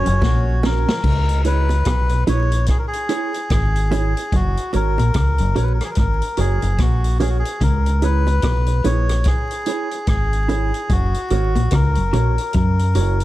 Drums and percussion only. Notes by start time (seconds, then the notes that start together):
0.06 closed hi-hat
0.22 kick, snare, high bongo
0.63 snare, high bongo, low bongo
0.89 snare
1.04 kick, crash
1.29 closed hi-hat
1.45 closed hi-hat, high bongo
1.69 closed hi-hat, high bongo
1.85 kick, cross-stick, closed hi-hat, high bongo
2.09 closed hi-hat
2.27 closed hi-hat, high bongo, low bongo
2.52 closed hi-hat
2.66 kick, cross-stick, closed hi-hat
2.93 closed hi-hat
3.09 closed hi-hat
3.34 closed hi-hat
3.50 kick, cross-stick, closed hi-hat
3.76 closed hi-hat
3.92 closed hi-hat, high bongo, low bongo
4.17 closed hi-hat
4.32 kick, closed hi-hat
4.57 closed hi-hat
4.73 closed hi-hat, high bongo
4.98 closed hi-hat, high bongo
5.14 kick, cross-stick, closed hi-hat, high bongo
5.38 closed hi-hat
5.56 closed hi-hat, high bongo, low bongo
5.80 cross-stick, closed hi-hat
5.95 kick, cross-stick, closed hi-hat
6.22 closed hi-hat
6.37 closed hi-hat
6.62 closed hi-hat
6.78 kick, cross-stick, closed hi-hat
7.04 closed hi-hat
7.20 closed hi-hat, high bongo, low bongo
7.45 closed hi-hat
7.61 kick, closed hi-hat
7.86 closed hi-hat
8.02 closed hi-hat, high bongo
8.27 closed hi-hat, high bongo
8.42 kick, cross-stick, closed hi-hat, high bongo
8.66 closed hi-hat
8.84 closed hi-hat, high bongo, low bongo
9.09 cross-stick, closed hi-hat
9.24 kick, cross-stick, closed hi-hat
9.51 closed hi-hat
9.66 closed hi-hat
9.91 closed hi-hat
10.07 kick, cross-stick, closed hi-hat
10.33 closed hi-hat
10.49 closed hi-hat, high bongo, low bongo
10.74 closed hi-hat
10.90 kick, closed hi-hat
11.14 closed hi-hat
11.30 closed hi-hat, high bongo
11.56 closed hi-hat, high bongo
11.71 kick, cross-stick, closed hi-hat, high bongo
11.95 closed hi-hat
12.13 closed hi-hat, high bongo, low bongo
12.38 closed hi-hat
12.53 kick, closed hi-hat
12.79 closed hi-hat
12.95 closed hi-hat
13.20 closed hi-hat